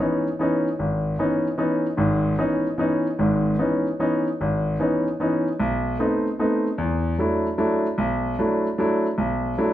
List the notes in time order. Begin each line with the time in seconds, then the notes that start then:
0.00 E3 B3 C#4 D#4
0.39 E3 B3 C#4 D#4
0.79 G#1
1.19 E3 B3 C#4 D#4
1.58 E3 B3 C#4 D#4
1.97 G#1 G#2
2.38 E3 B3 C#4 D#4
2.78 E3 B3 C#4 D#4
3.19 G#1 G#2
3.58 E3 B3 C#4 D#4
4.00 E3 B3 C#4 D#4
4.41 G#1
4.80 E3 B3 C#4 D#4
5.20 E3 B3 C#4 D#4
5.60 B1
5.99 A3 B3 C4 D#4
6.39 A3 B3 C4 D#4
6.78 E2
7.18 F#3 A3 D4 E4
7.58 F#3 A3 D4 E4
7.98 B1
8.38 F#3 A3 D4 E4
8.78 F#3 A3 D4 E4
9.18 B1
9.58 F#3 A3 D4 E4